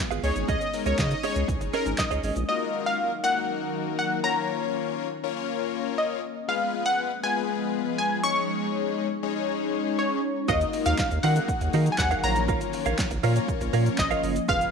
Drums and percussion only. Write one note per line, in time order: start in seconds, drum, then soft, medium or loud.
0.11 closed hi-hat medium
0.11 shaker medium
0.24 open hi-hat medium
0.24 shaker medium
0.36 closed hi-hat soft
0.36 shaker medium
0.48 kick loud
0.48 closed hi-hat medium
0.48 shaker medium
0.61 closed hi-hat medium
0.61 shaker medium
0.74 open hi-hat medium
0.74 shaker medium
0.86 closed hi-hat medium
0.86 shaker medium
0.98 kick loud
0.98 snare loud
0.98 clap loud
0.98 closed hi-hat medium
0.98 shaker medium
1.11 closed hi-hat medium
1.11 shaker medium
1.23 open hi-hat medium
1.23 shaker medium
1.36 closed hi-hat medium
1.36 shaker medium
1.48 kick loud
1.48 closed hi-hat medium
1.48 shaker medium
1.61 closed hi-hat medium
1.61 shaker soft
1.74 open hi-hat medium
1.74 shaker medium
1.86 closed hi-hat soft
1.86 shaker medium
1.98 kick loud
1.98 snare medium
1.98 clap loud
1.98 closed hi-hat medium
1.98 shaker medium
2.11 closed hi-hat medium
2.11 shaker medium
2.24 open hi-hat medium
2.24 shaker medium
2.36 closed hi-hat soft
2.36 shaker medium
10.48 kick loud
10.48 shaker medium
10.61 closed hi-hat medium
10.61 shaker medium
10.73 open hi-hat medium
10.73 shaker medium
10.86 closed hi-hat medium
10.86 shaker medium
10.98 kick loud
10.98 snare medium
10.98 clap loud
10.98 shaker medium
11.11 closed hi-hat medium
11.11 shaker medium
11.23 open hi-hat medium
11.23 shaker medium
11.36 closed hi-hat medium
11.36 shaker medium
11.48 kick loud
11.48 shaker medium
11.61 closed hi-hat medium
11.61 shaker medium
11.73 open hi-hat medium
11.73 shaker medium
11.86 closed hi-hat medium
11.86 shaker medium
11.98 kick loud
11.98 snare medium
11.98 clap loud
11.98 shaker medium
12.11 closed hi-hat medium
12.11 shaker medium
12.23 open hi-hat medium
12.23 shaker medium
12.36 closed hi-hat medium
12.36 shaker medium
12.48 kick loud
12.48 shaker medium
12.61 closed hi-hat medium
12.61 shaker medium
12.73 open hi-hat medium
12.73 shaker medium
12.86 closed hi-hat medium
12.86 shaker medium
12.98 kick loud
12.98 snare loud
12.98 clap loud
12.98 shaker medium
13.11 closed hi-hat medium
13.11 shaker medium
13.24 open hi-hat medium
13.24 shaker medium
13.36 closed hi-hat medium
13.36 shaker medium
13.48 kick loud
13.48 shaker medium
13.61 closed hi-hat medium
13.61 shaker medium
13.73 open hi-hat medium
13.73 shaker medium
13.86 closed hi-hat medium
13.86 shaker medium
13.98 kick loud
13.98 snare medium
13.98 clap loud
13.98 shaker medium
14.11 closed hi-hat medium
14.11 shaker medium
14.24 open hi-hat medium
14.24 shaker medium
14.36 closed hi-hat medium
14.36 shaker medium
14.48 kick loud
14.48 shaker medium
14.61 closed hi-hat medium
14.61 shaker medium